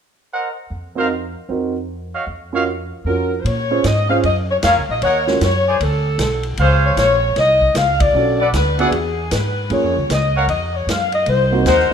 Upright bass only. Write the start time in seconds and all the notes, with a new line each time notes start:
0.70 F2
1.49 F2
2.26 F2
3.04 F2
3.44 A#2
3.84 G#2
4.24 F#2
4.63 F2
4.77 C#2
4.89 A#1
5.02 D#2
5.41 F#2
5.80 D2
6.18 B1
6.58 C#2
6.96 A#1
7.36 C2
7.74 C#2
8.13 B1
8.53 D2
8.91 E2
9.32 G#2
9.70 F#2
9.83 F2
9.97 C#2
10.09 C#2
10.47 F2
10.86 F#2
11.26 C2
11.65 D#2
11.90 muted upright bass stroke